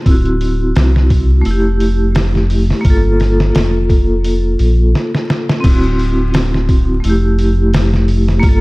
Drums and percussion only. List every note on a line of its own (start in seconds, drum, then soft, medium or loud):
0.06 kick loud
0.06 open hi-hat medium
0.25 closed hi-hat soft
0.41 open hi-hat medium
0.76 snare loud
0.76 open hi-hat medium
0.96 snare soft
1.10 kick medium
1.10 open hi-hat medium
1.45 open hi-hat medium
1.80 open hi-hat medium
2.15 snare loud
2.15 open hi-hat medium
2.35 snare soft
2.50 open hi-hat medium
2.70 snare soft
2.85 kick loud
2.85 open hi-hat medium
3.20 snare soft
3.20 open hi-hat medium
3.40 snare medium
3.55 snare loud
3.55 open hi-hat medium
3.90 kick medium
3.90 open hi-hat medium
4.24 open hi-hat medium
4.59 open hi-hat medium
4.95 snare medium
5.15 snare medium
5.30 snare medium
5.49 snare medium
5.64 kick loud
5.64 open hi-hat medium
5.64 crash loud
5.84 closed hi-hat soft
5.99 open hi-hat medium
6.34 snare loud
6.34 open hi-hat medium
6.54 snare soft
6.69 kick medium
6.69 open hi-hat medium
7.04 open hi-hat medium
7.39 open hi-hat medium
7.74 snare loud
7.74 open hi-hat medium
7.94 snare soft
8.08 open hi-hat medium
8.28 snare soft
8.43 kick loud
8.43 open hi-hat medium